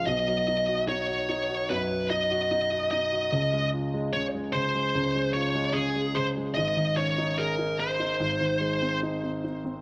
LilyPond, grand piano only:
\new Staff \with { instrumentName = "Grand piano" } { \clef bass \time 4/4 \key des \major \tempo 4 = 74 <ces, ces>16 ges16 ees'16 ges'16 ees'16 ges'16 ees'16 ges'16 <ges, ges>16 ges16 ees'16 ges'16 ees'16 ges'16 ees'16 ges'16 | <des, des>16 aes16 f'16 aes16 des16 aes16 des16 aes16 <des, des>16 aes16 f'16 aes16 des16 aes16 des16 aes16 | <aes,, aes,>16 ees16 des'16 ees'16 aes'16 ees'16 aes'16 ees'16 <aes,, aes,>16 ees16 aes16 c'16 ees'16 c'16 ees'16 c'16 | }